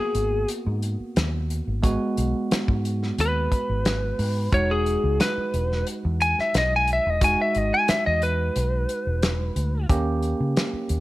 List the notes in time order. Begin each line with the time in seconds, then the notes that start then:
Already playing: A#3 B3 F#4 G#4
0.15 G#1, closed hi-hat
0.48 closed hi-hat
0.67 G#2
0.82 closed hi-hat
1.00 muted fingered electric bass stroke
1.16 D#2, snare, closed hi-hat
1.50 closed hi-hat
1.68 G#1
1.83 G#3 B3 F#4, kick, closed hi-hat
2.17 B1, closed hi-hat
2.51 muted fingered electric bass stroke, snare, closed hi-hat
2.68 G#2, kick
2.85 closed hi-hat
3.03 snare
3.18 D#2 B4, closed hi-hat
3.52 kick, closed hi-hat
3.69 G#1
3.85 snare, closed hi-hat
4.19 G#2, open hi-hat
4.52 E1 G#3 D#4 F#4 C#5, kick, closed hi-hat
4.71 G#4
4.86 closed hi-hat
5.04 C#2
5.20 B4, snare, closed hi-hat
5.37 muted fingered electric bass stroke
5.54 E1, closed hi-hat
5.72 snare
5.87 closed hi-hat
6.05 E2
6.21 G#5, closed hi-hat
6.39 E5, muted fingered electric bass stroke, snare
6.54 B1 D#5, snare, closed hi-hat
6.76 G#5
6.87 closed hi-hat
6.93 E5
7.06 E1 D#5
7.21 G#3 D#4 F#4 G#5, kick, closed hi-hat
7.42 E5
7.55 G#1 D#5, closed hi-hat
7.74 G#5
7.88 E5, muted fingered electric bass stroke, snare, closed hi-hat
8.06 E2 D#5
8.22 B4, closed hi-hat
8.56 B1, closed hi-hat
8.89 closed hi-hat
9.07 E1
9.22 snare, closed hi-hat
9.56 D2, closed hi-hat
9.89 D#2 A#3 C#4 G4, kick, closed hi-hat
10.23 closed hi-hat
10.40 C#3
10.57 snare, closed hi-hat
10.73 muted fingered electric bass stroke
10.89 D#2, closed hi-hat